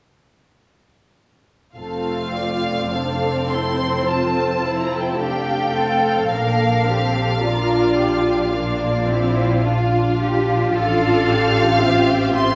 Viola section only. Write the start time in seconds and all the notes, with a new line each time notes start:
1.77 A3 C4
2.93 C4 D4
3.51 E4
4.07 F4
4.63 E4
5.18 A3 D4
5.74 C4
6.31 A#3 D4
6.87 C4
7.44 D4 F4
8.53 A#3 D4
9.09 C4
9.65 D4
10.74 D4 F4
11.28 G4
11.81 C4
12.36 C4